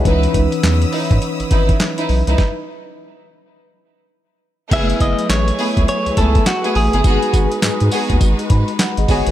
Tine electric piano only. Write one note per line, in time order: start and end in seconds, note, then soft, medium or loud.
0.00 0.23 C#5 medium
0.00 0.23 F#5 medium
0.05 2.34 E3 medium
0.05 2.35 C#4 medium
0.05 2.35 D#4 medium
0.05 2.36 B4 medium
4.71 7.00 A3 medium
4.71 7.01 E4 medium
4.71 7.01 G#4 medium
4.71 7.01 B4 medium
7.04 9.31 G#3 medium
7.04 9.31 D#4 medium
7.04 8.48 F#4 medium
7.04 8.48 B4 medium
8.51 8.77 B5 medium
8.80 9.31 F#5 medium
8.98 9.09 G#4 medium
8.98 9.08 D#5 medium
9.10 9.27 G#4 medium
9.10 9.26 C#5 medium
9.28 9.31 B4 medium